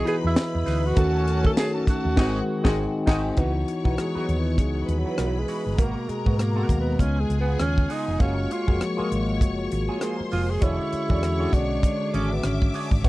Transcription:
Already playing: E3 B3 F#4 G#4 D#5
0.05 E3 B3 D#4 G#4 B4 D#5 B5, closed hi-hat
0.23 E2 E4, muted clean electric guitar stroke
0.36 muted clean electric guitar stroke, snare, closed hi-hat, tambourine
0.54 E2, muted clean electric guitar stroke
0.66 D2 D#4 G#4 B4, snare, open hi-hat
0.84 F#4, muted clean electric guitar stroke
0.95 D#2 A2 D#3 F#3 A3 C#4 F#4 A4 A5, kick, closed hi-hat
1.28 closed hi-hat
1.43 D#3 A3 C#4 F#4 A4, muted clean electric guitar stroke, kick
1.57 G#4, muted clean electric guitar stroke, snare, closed hi-hat, tambourine
1.74 C#4 F#4 A4
1.87 F#4, muted clean electric guitar stroke, muted fingered electric bass stroke, kick, closed hi-hat
2.04 D#2, muted clean electric guitar stroke
2.16 G#1 C3 D#3 G#3 C4 D#4 F#4 G#4 F#5, kick, snare, crash
2.63 G#1 C3 D#3 G#3 C4 D#4 F#4 G#4 F#5, kick, snare
3.06 G#1 C3 D#3 G#3 C4 D#4 F#4 G#4 F#5, kick, snare, crash
3.36 C#2 E3 B3 D#4 E4 F#4 B4 C#5 C#6, kick, closed hi-hat
3.55 muted clean electric guitar stroke
3.68 muted clean electric guitar stroke, closed hi-hat
3.84 B1 E3 B3 D#4 E4 F#4 B4, kick
3.97 G#3, muted clean electric guitar stroke, cross-stick, closed hi-hat
4.14 B3 D#4 E4 F#4 G#4 B4, muted fingered electric bass stroke
4.18 F#3
4.29 D#2, closed hi-hat
4.39 E3
4.45 muted clean electric guitar stroke
4.58 C#2 G#3, muted clean electric guitar stroke, kick, closed hi-hat
4.75 muted clean electric guitar stroke
4.88 D#2 B4 B5, closed hi-hat
4.99 F#3
5.05 E4 F#4 B4
5.17 B1 E4 F#4 B4, cross-stick, closed hi-hat
5.35 muted clean electric guitar stroke
5.39 G#3
5.48 E4 F#4 B4, cross-stick, open hi-hat
5.65 G1, muted clean electric guitar stroke
5.77 G#1 B2 G#3 A#3 B3 F#4 A#4 A#5, kick, closed hi-hat
5.96 muted clean electric guitar stroke
6.08 G#3, muted clean electric guitar stroke, muted fingered electric bass stroke, closed hi-hat
6.25 G#2 B2 G#3 A#3 B3 F#4 B4, kick
6.38 A#3, muted clean electric guitar stroke, cross-stick, closed hi-hat
6.55 B2 G#3 A#3 B3 F#4 A#4
6.69 D#2, muted clean electric guitar stroke, kick, closed hi-hat
6.80 B3
6.86 muted clean electric guitar stroke
6.99 C#2 C#3 G#3 B3 C#4 F4 G#4 G#5, muted clean electric guitar stroke, kick, closed hi-hat
7.16 G#3, muted clean electric guitar stroke
7.30 C#2, closed hi-hat
7.41 B3
7.46 B3 F4 G#4
7.59 D#2 C#4, cross-stick, closed hi-hat
7.76 muted clean electric guitar stroke, kick
7.89 B3 D#4 F4 G#4, cross-stick, open hi-hat
8.07 F1, muted clean electric guitar stroke
8.19 F#1 G#3 A#3 C#4 F4 F#4 G#4 C#5 C#6, kick, closed hi-hat
8.37 muted clean electric guitar stroke
8.50 F4, muted clean electric guitar stroke, closed hi-hat
8.67 F1 F3 G#3 A#3 F4 F#4 G#4, kick
8.80 muted clean electric guitar stroke, cross-stick, closed hi-hat
8.97 G#3 A#3 F4 F#4 G#4, muted fingered electric bass stroke
9.12 G#1, closed hi-hat
9.29 muted clean electric guitar stroke
9.41 F#1, muted clean electric guitar stroke, kick, closed hi-hat
9.59 muted clean electric guitar stroke
9.72 G#1, closed hi-hat
9.89 A#3 F4 G#4
10.01 A#3 F4 G#4 C5 C6, cross-stick, closed hi-hat
10.19 muted clean electric guitar stroke, muted fingered electric bass stroke
10.32 F1 A#3 F4 G#4, cross-stick, open hi-hat
10.49 G#4, muted clean electric guitar stroke
10.60 E1 D3 G#3 C#4 D4 E4 F#4 G#4 C#5 C#6, kick, closed hi-hat
10.80 muted clean electric guitar stroke
10.93 muted clean electric guitar stroke, muted fingered electric bass stroke, closed hi-hat
11.08 E2 D3 G#3 C#4 D4 F#4 G#4 D5, kick
11.23 cross-stick, closed hi-hat
11.38 D3 G#3 D4 F#4 G#4 C#5
11.53 B1 D4, kick, closed hi-hat
11.70 muted clean electric guitar stroke
11.83 kick, closed hi-hat
12.01 muted clean electric guitar stroke
12.13 G#1 C#4 D4 G#4 C#5 E5 D6, closed hi-hat
12.31 B3, muted clean electric guitar stroke
12.43 G#1 C#4, cross-stick, closed hi-hat
12.62 muted clean electric guitar stroke, kick
12.74 D4 G#4 C#5, cross-stick, open hi-hat
12.91 G#1, muted clean electric guitar stroke, kick
13.03 A1 C#3 A3 B3 C#4 F#4 B4 C#5 C#6, kick, closed hi-hat

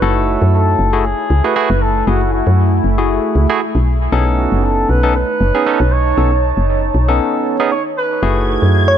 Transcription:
Already playing: B4 C#5
0.02 F#1 A3 E4 F#4 A4
0.39 F#2 A3
0.54 A4
0.75 G#5
0.79 F#1
0.93 A3 E4 F#4 G#4
1.05 G#4
1.30 C#2
1.44 A3 E4 F#4 G#4 B4
1.56 A3 E4 F#4 G#4
1.70 F#1
1.82 A4
2.07 F#1 A3 E4 F#4 G#4
2.33 F#4
2.47 F#2
2.84 F#1
2.98 A3 E4 F#4 G#4
3.35 C#2
3.49 A3 E4 F#4 G#4
3.75 B1
3.87 D#4
4.04 C#5
4.12 B1 B3 C#4 D#4 G#4 A4
4.38 F#4
4.51 F#1 A5
4.64 A4
4.89 B1 B4
5.03 B3 C#4 D#4 A4
5.15 B4
5.41 F#1
5.55 B3 C#4 D#4 G#4
5.66 B3 C#4 D#4 A4
5.80 B1
5.92 C#5
6.18 B1 B3 C#4 D#4 A4
6.57 F#1
6.95 B1
7.08 B3 C#4 D#4 A4
7.60 B3 C#4 D#4 G#4
7.71 C#5
7.97 B4
8.23 F#1 A3 E4 F#4 G#4 G#6
8.37 G#5
8.61 F#2 A4
8.88 C#5

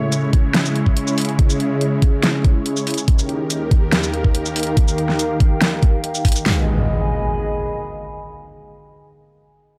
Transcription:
Already playing: C#3 G#3 C#4 E4 C#5 E5 B5 C#6
0.01 G#4
0.12 closed hi-hat, shaker
0.33 kick, closed hi-hat
0.54 snare, closed hi-hat
0.65 shaker
0.76 closed hi-hat
0.86 kick
0.97 closed hi-hat
1.07 shaker
1.18 closed hi-hat, open hi-hat
1.25 closed hi-hat
1.29 closed hi-hat
1.39 kick, closed hi-hat
1.50 shaker
1.60 closed hi-hat
1.81 closed hi-hat
2.02 kick, closed hi-hat
2.23 snare, closed hi-hat
2.45 kick, closed hi-hat
2.66 closed hi-hat
2.77 shaker
2.87 closed hi-hat, open hi-hat
2.94 closed hi-hat
2.98 closed hi-hat, shaker
3.08 D#2 D#3 D#4 G4 A#4, kick, closed hi-hat
3.19 shaker
3.29 closed hi-hat
3.50 A#4, closed hi-hat, shaker
3.68 F5, kick, closed hi-hat
3.92 snare, closed hi-hat
4.03 shaker
4.14 G5, closed hi-hat
4.24 kick
4.35 closed hi-hat
4.46 shaker
4.56 closed hi-hat, open hi-hat
4.63 closed hi-hat
4.67 closed hi-hat
4.77 kick, closed hi-hat
4.88 shaker
4.98 closed hi-hat
5.09 snare
5.19 closed hi-hat, shaker
5.40 kick, closed hi-hat
5.62 snare, closed hi-hat
5.83 kick, closed hi-hat
6.04 closed hi-hat
6.15 shaker
6.25 kick, closed hi-hat, open hi-hat
6.32 closed hi-hat
6.36 closed hi-hat, shaker
6.46 G#3 G#4 B4 D#5, snare, open hi-hat, impact
6.52 D#5
6.59 G#5
6.65 B5

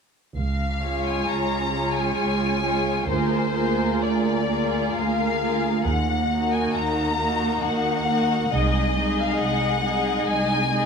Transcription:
0.36 C#2 F5
0.83 G#3 F4 G#4 C#5
1.07 G#5
1.29 C#2 A#5
1.72 G#3 F4 G#4 C#5
1.96 G#5
2.19 C#2
2.62 G#3 F4 G#4 C#5
3.08 D2 A#3 F4 G#4 A#4 C5
3.53 A#3 F4 G#4 A#4
4.02 D2 D5
4.48 A#3 F4 G#4 A#4
4.94 D2 F5
5.40 A#3 F4 G#4 A#4
5.86 D#2 F#5
6.30 A#3 D#4 F#4 A#4
6.52 G#5
6.73 D#2 A#5
7.18 A#3 D#4 F#4 A#4
7.63 D#2 F#5
8.08 A#3 D#4 F#4 A#4
8.53 C2 G#3 D#4 G#4 D#5
8.97 G#3 D#4 G#4 D#5
9.21 F5
9.40 C2 F#5
9.84 G#3 D#4 G#4 D#5
10.27 C2 G#5
10.72 G#3 D#4 G#4 D#5

